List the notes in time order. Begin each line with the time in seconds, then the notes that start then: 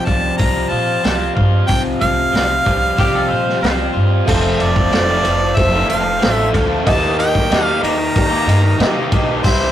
Already playing: C3 F3
0.05 C2 G3 C4 F4 G4 A5, kick
0.38 C2 C3 F3 C4 F4 G4 A#5, kick, open hi-hat
0.69 A#2 F4 A5
1.04 C2 F3 C4 F4 G4, snare, open hi-hat
1.35 G2 F4, kick
1.67 C2 C3 F3 C4 F4 G4 G5, kick, open hi-hat
2.00 C2 F3 F5, kick
2.32 C2 F3 C4 F4 G4, snare, open hi-hat
2.65 C2 G3 C4 F4 G4, kick
2.97 C2 C3 F3 C4 F4 G4, kick, open hi-hat
3.15 A4
3.28 A#2 F4 C5
3.49 snare
3.61 C2 F3 C4 F4 G4 C5, snare, open hi-hat
3.93 G2 F4
4.25 F1 F2 C3 F3 A3 C4 F4 A4 C5, kick, crash
4.51 C5
4.60 F1 D5, ride
4.76 kick
4.90 F1 F3 A3 C4 F4 A4 C5, snare, ride
5.22 F1 F3 A3 C4 F4 A4, ride
5.38 muted overdriven electric guitar stroke
5.56 F1 F3 A3 C4 F4 A4 C5 E5, kick, ride
5.72 A3 C4 F4
5.87 F1 F3 A3 C4 F4 A4 F5, ride
6.04 muted overdriven electric guitar stroke
6.19 A1 F3 A3 C4 F4 A4 C5, ride
6.23 A4, snare
6.32 E5
6.51 D2 F3 A3 C4 F4, kick, ride
6.68 A3 C4 F4
6.84 D#2 D#3 A#3 D#4 G4 A#4 D#5, kick, ride
6.88 D#4 G4 A5
7.19 G5, ride
7.35 kick
7.49 D#2 D#3 A#3 D#4 G4 A#4 D#5, snare, ride
7.53 G4
7.65 F5
7.80 D#2 D#3 A#3 D#4 G4 A#5, ride
7.86 A#3 D#4
7.97 muted overdriven electric guitar stroke
8.16 D#2 D#3 A#3 D#4 G4 A#4 D5, kick, ride
8.30 A#3 D#4 G4
8.45 G2 D#3 A#3 D#4 G4, ride
8.49 A#3 D#4
8.63 muted overdriven electric guitar stroke
8.78 C3 D#3 A#3 D#4 G4 A#4 D#5, snare, ride
9.12 B1 D#3 A#3 D#4 G4, kick, ride
9.27 D#4 G4
9.31 A#3
9.43 C2 C3 E3 G3 C4 E4 G4 C5 E5, kick, crash
9.47 E4